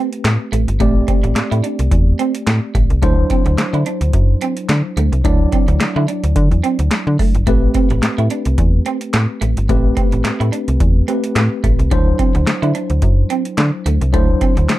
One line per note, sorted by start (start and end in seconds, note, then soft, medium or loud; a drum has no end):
0.00 0.76 A3 medium
0.00 0.76 C4 medium
0.00 0.77 G4 medium
0.00 0.77 B4 medium
0.13 closed hi-hat medium
0.25 0.38 A2 medium
0.25 snare loud
0.25 clap medium
0.25 closed hi-hat medium
0.52 0.66 A1 medium
0.52 0.63 A3 medium
0.52 closed hi-hat medium
0.68 0.78 G1 medium
0.68 closed hi-hat soft
0.80 1.04 A1 loud
0.80 2.98 A3 medium
0.80 0.91 A3 medium
0.80 2.99 C4 medium
0.80 2.99 G4 medium
0.80 2.99 D5 medium
0.80 kick loud
0.80 closed hi-hat medium
1.08 1.19 C4 medium
1.08 kick loud
1.08 closed hi-hat medium
1.23 1.34 A1 medium
1.23 muted clean electric guitar stroke soft
1.23 closed hi-hat soft
1.36 1.42 A2 soft
1.36 muted clean electric guitar stroke soft
1.36 snare loud
1.36 clap medium
1.36 closed hi-hat medium
1.51 1.62 A2 medium
1.51 1.60 E4 medium
1.51 closed hi-hat soft
1.64 1.74 D4 medium
1.64 closed hi-hat medium
1.79 1.90 C2 medium
1.79 closed hi-hat soft
1.91 2.15 E2 medium
1.91 kick loud
1.91 closed hi-hat medium
2.19 2.30 C4 medium
2.19 closed hi-hat medium
2.35 closed hi-hat medium
2.47 2.60 A2 loud
2.47 snare loud
2.47 clap medium
2.47 closed hi-hat medium
2.75 2.88 A1 medium
2.75 2.86 A3 medium
2.75 kick loud
2.75 closed hi-hat medium
2.90 3.01 C2 medium
2.90 closed hi-hat soft
3.02 3.26 D2 loud
3.02 5.20 F#3 medium
3.02 3.14 A3 medium
3.02 5.21 D4 medium
3.02 5.21 E4 medium
3.02 5.21 C5 medium
3.02 kick loud
3.02 closed hi-hat medium
3.30 3.42 C4 medium
3.30 kick medium
3.30 closed hi-hat medium
3.46 3.56 D2 loud
3.46 muted clean electric guitar stroke soft
3.46 closed hi-hat soft
3.58 3.64 D3 soft
3.58 muted clean electric guitar stroke soft
3.58 snare loud
3.58 clap medium
3.58 closed hi-hat medium
3.73 3.84 D3 medium
3.73 3.82 E4 medium
3.73 closed hi-hat soft
3.86 3.97 D4 medium
3.86 closed hi-hat medium
4.01 4.11 D2 medium
4.01 closed hi-hat soft
4.13 4.37 F#2 medium
4.13 kick loud
4.13 closed hi-hat medium
4.41 4.53 C4 medium
4.41 closed hi-hat medium
4.57 closed hi-hat medium
4.69 4.82 D3 loud
4.69 snare loud
4.69 clap medium
4.69 closed hi-hat medium
4.97 5.10 D2 medium
4.97 5.08 A3 medium
4.97 closed hi-hat medium
5.12 5.23 C2 medium
5.12 closed hi-hat soft
5.24 5.48 D2 medium
5.24 7.43 F#3 medium
5.24 5.36 A3 medium
5.24 7.43 D4 medium
5.24 7.43 E4 medium
5.24 7.43 D5 medium
5.24 kick loud
5.24 closed hi-hat medium
5.52 5.64 C4 medium
5.52 kick medium
5.52 closed hi-hat medium
5.68 5.78 D2 loud
5.68 muted clean electric guitar stroke soft
5.68 closed hi-hat soft
5.80 5.87 D3 soft
5.80 muted clean electric guitar stroke soft
5.80 snare loud
5.80 clap medium
5.80 closed hi-hat medium
5.96 6.06 D3 loud
5.96 6.05 E4 medium
6.08 6.19 D4 medium
6.08 closed hi-hat medium
6.24 6.34 D2 medium
6.24 closed hi-hat soft
6.36 6.49 D3 loud
6.36 kick loud
6.36 closed hi-hat medium
6.51 6.62 E2 medium
6.51 closed hi-hat soft
6.64 6.74 C4 medium
6.64 closed hi-hat medium
6.79 6.89 D2 medium
6.79 closed hi-hat medium
6.91 snare loud
6.91 clap medium
6.91 closed hi-hat medium
7.07 7.17 D3 loud
7.19 7.30 A3 medium
7.19 kick loud
7.19 open hi-hat medium
7.35 7.48 G1 medium
7.35 closed hi-hat soft
7.47 7.70 A1 loud
7.47 9.65 A3 medium
7.47 7.58 A3 medium
7.47 9.65 C4 medium
7.47 9.66 G4 medium
7.47 9.66 B4 medium
7.47 kick loud
7.47 closed hi-hat medium
7.74 7.86 C4 medium
7.74 kick medium
7.74 closed hi-hat medium
7.90 8.01 A1 medium
7.90 muted clean electric guitar stroke soft
7.90 closed hi-hat soft
8.03 8.09 A2 soft
8.03 muted clean electric guitar stroke soft
8.03 snare loud
8.03 clap medium
8.03 closed hi-hat medium
8.18 8.28 A2 medium
8.18 8.27 E4 medium
8.18 closed hi-hat soft
8.30 8.41 D4 medium
8.30 closed hi-hat medium
8.45 8.56 C2 medium
8.45 closed hi-hat soft
8.58 8.81 E2 loud
8.58 kick loud
8.58 closed hi-hat medium
8.86 8.97 C4 medium
8.86 closed hi-hat medium
9.01 closed hi-hat medium
9.13 9.27 A2 loud
9.13 snare loud
9.13 clap medium
9.13 closed hi-hat medium
9.41 9.55 A1 medium
9.41 9.52 A3 medium
9.41 closed hi-hat medium
9.57 9.67 G1 medium
9.57 closed hi-hat soft
9.69 9.93 A1 loud
9.69 11.05 A3 medium
9.69 9.80 A3 medium
9.69 11.05 C4 medium
9.69 11.06 G4 medium
9.69 11.06 B4 medium
9.69 kick loud
9.69 closed hi-hat medium
9.97 10.08 C4 medium
9.97 kick medium
9.97 closed hi-hat medium
10.12 10.23 A1 medium
10.12 muted clean electric guitar stroke soft
10.12 closed hi-hat medium
10.24 10.31 A2 medium
10.24 muted clean electric guitar stroke soft
10.24 snare loud
10.24 clap medium
10.24 closed hi-hat medium
10.40 10.51 A2 medium
10.40 10.49 E4 medium
10.40 closed hi-hat soft
10.52 10.63 D4 medium
10.52 closed hi-hat medium
10.68 10.78 C2 medium
10.68 closed hi-hat soft
10.80 11.04 E2 medium
10.80 kick loud
10.80 closed hi-hat medium
11.08 11.91 A3 medium
11.08 11.19 C4 medium
11.08 11.91 C4 soft
11.08 11.92 G4 soft
11.08 11.92 B4 medium
11.08 closed hi-hat medium
11.24 closed hi-hat medium
11.36 11.49 A2 loud
11.36 snare loud
11.36 clap medium
11.36 closed hi-hat medium
11.64 11.77 A1 medium
11.64 11.75 A3 medium
11.64 kick medium
11.64 closed hi-hat medium
11.79 11.89 C2 medium
11.79 closed hi-hat soft
11.91 12.15 D2 loud
11.91 14.10 F#3 medium
11.91 12.02 A3 medium
11.91 14.10 D4 medium
11.91 14.10 E4 medium
11.91 14.10 C5 medium
11.91 kick loud
11.91 closed hi-hat medium
12.19 12.30 C4 medium
12.19 kick medium
12.19 closed hi-hat medium
12.35 12.45 D2 loud
12.35 muted clean electric guitar stroke soft
12.35 closed hi-hat medium
12.47 12.53 D3 soft
12.47 muted clean electric guitar stroke soft
12.47 snare loud
12.47 clap medium
12.47 closed hi-hat medium
12.62 12.73 D3 loud
12.62 12.71 E4 medium
12.62 closed hi-hat soft
12.75 12.86 D4 medium
12.75 closed hi-hat medium
12.90 13.00 D2 medium
12.90 closed hi-hat soft
13.02 13.26 F#2 medium
13.02 kick loud
13.02 closed hi-hat medium
13.30 13.41 C4 medium
13.30 closed hi-hat medium
13.45 closed hi-hat medium
13.58 13.71 D3 loud
13.58 snare loud
13.58 clap medium
13.58 closed hi-hat medium
13.86 13.99 D2 medium
13.86 13.97 A3 medium
13.86 closed hi-hat medium
14.01 14.15 C2 medium
14.01 closed hi-hat soft
14.13 14.37 D2 medium
14.13 14.79 F#3 medium
14.13 14.25 A3 medium
14.13 14.79 D4 medium
14.13 14.79 E4 medium
14.13 14.79 C5 medium
14.13 kick loud
14.13 closed hi-hat medium
14.41 14.52 C4 medium
14.41 kick loud
14.41 closed hi-hat medium
14.57 14.67 D2 loud
14.57 muted clean electric guitar stroke soft
14.57 closed hi-hat soft
14.69 14.75 D3 soft
14.69 muted clean electric guitar stroke soft
14.69 snare loud
14.69 clap medium
14.69 closed hi-hat medium